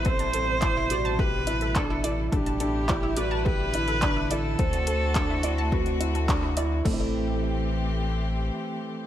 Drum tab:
CC |----------------|----------------|----------------|x---------------|
HH |xxx-x-x---xxx-x-|xxx-x-x---xxx-x-|xxx-x-x--xxxx-x-|----------------|
CP |----x-------x---|----x-------x---|----x-------x---|----------------|
BD |o---o---o---o---|o---o---o---o---|o---o---o---o---|o---------------|